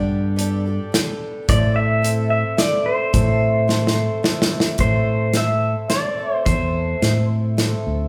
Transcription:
Already playing: fingered electric bass G2, twelve-string acoustic guitar G3 B3 D4 G4 A4, pedal steel guitar D5
0.36 twelve-string acoustic guitar B3 D4 G4 A4, closed hi-hat
0.66 twelve-string acoustic guitar D4 G4 A4
0.92 twelve-string acoustic guitar B3 D4 G4 A4, snare, closed hi-hat
1.48 twelve-string acoustic guitar A2 E3 A3 C4 E4 A4, fingered electric bass A2, pedal steel guitar D5, kick, closed hi-hat
1.76 pedal steel guitar E5
2.02 twelve-string acoustic guitar A3 C4 E4 A4, closed hi-hat
2.30 pedal steel guitar E5
2.57 twelve-string acoustic guitar A3 C4 E4 A4, pedal steel guitar D5, snare, closed hi-hat
2.86 pedal steel guitar C5
3.13 twelve-string acoustic guitar A2 E3 A3 C4 E4 A4, fingered electric bass A2, kick, closed hi-hat
3.68 twelve-string acoustic guitar A3 C4 E4 A4, snare
3.87 snare
4.23 twelve-string acoustic guitar A3 C4 E4 A4, snare
4.42 snare
4.60 snare
4.78 twelve-string acoustic guitar A2 E3 A3 C4 E4 A4, fingered electric bass A2, pedal steel guitar C5, kick, closed hi-hat
5.32 twelve-string acoustic guitar A3 C4 E4 A4, snare, closed hi-hat
5.37 pedal steel guitar E5
5.90 twelve-string acoustic guitar A3 C4 E4 A4, pedal steel guitar D5, snare, closed hi-hat
6.18 twelve-string acoustic guitar A3 C4 E4 A4
6.35 pedal steel guitar C5
6.45 fingered electric bass E2, twelve-string acoustic guitar A2 E3 A3 C4 E4 A4, pedal steel guitar C5, kick, closed hi-hat
7.01 fingered electric bass A2, twelve-string acoustic guitar A3 C4 E4 A4, snare, closed hi-hat
7.57 twelve-string acoustic guitar A3 C4 E4 A4, snare, closed hi-hat
7.87 fingered electric bass D2

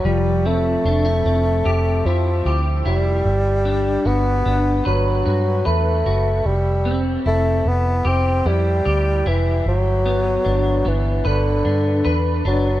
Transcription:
Already playing: clean electric guitar D4 F#4 B4
0.05 fingered electric bass F1, clean electric guitar F3, bassoon G3
0.46 bassoon A3, clean electric guitar C4
0.85 fingered electric bass F1, clean electric guitar D4
1.05 clean electric guitar E4
1.25 fingered electric bass F1, clean electric guitar C4
1.66 fingered electric bass F1, clean electric guitar G4
2.05 fingered electric bass F2, bassoon F3, clean electric guitar E4
2.46 fingered electric bass D2, clean electric guitar G4
2.85 fingered electric bass F1, bassoon G3, clean electric guitar E4
3.25 fingered electric bass G1
3.65 clean electric guitar D4
4.05 fingered electric bass G1, bassoon B3, clean electric guitar F#4
4.46 fingered electric bass G1, clean electric guitar D4
4.85 fingered electric bass G1, bassoon F#3, clean electric guitar B4
5.25 fingered electric bass G2, clean electric guitar F#4
5.65 fingered electric bass E2, bassoon A3, clean electric guitar B4
6.06 fingered electric bass F#1, clean electric guitar F#4
6.46 fingered electric bass F1, bassoon G3
6.85 clean electric guitar C4
7.26 fingered electric bass F1, bassoon A3, clean electric guitar E4
7.65 fingered electric bass F1, bassoon B3
8.05 fingered electric bass F1, bassoon C4, clean electric guitar G4
8.45 fingered electric bass F2, bassoon G3, clean electric guitar E4
8.85 fingered electric bass D2, clean electric guitar G4
9.26 fingered electric bass F1, bassoon E3, clean electric guitar E4
9.66 fingered electric bass G1, bassoon F#3
10.06 clean electric guitar B3
10.45 fingered electric bass G1, clean electric guitar D4
10.85 fingered electric bass G1, bassoon E3, clean electric guitar B3
11.25 fingered electric bass G1, bassoon D3, clean electric guitar B4
11.65 fingered electric bass G2, clean electric guitar D4
12.05 fingered electric bass E2, clean electric guitar B4
12.45 fingered electric bass F#1, bassoon F#3, clean electric guitar D4

